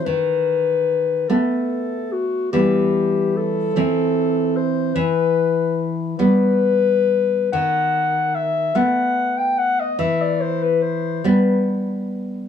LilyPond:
<<
  \new Staff \with { instrumentName = "Clarinet" } { \time 6/8 \key e \minor \tempo 4. = 49 b'4. a'4 fis'8 | g'4 a'4. c''8 | b'4~ b'16 r16 b'4. | fis''4 e''8 fis''8. g''16 fis''16 dis''16 |
e''16 d''16 c''16 b'16 c''8 b'8 r4 | }
  \new Staff \with { instrumentName = "Nylon-string guitar" } { \clef bass \time 6/8 \key e \minor dis4. <a b>4. | <e g b>4. <e c'>4. | e4. <g b>4. | dis4. <a b>4. |
e4. <g b>4. | }
>>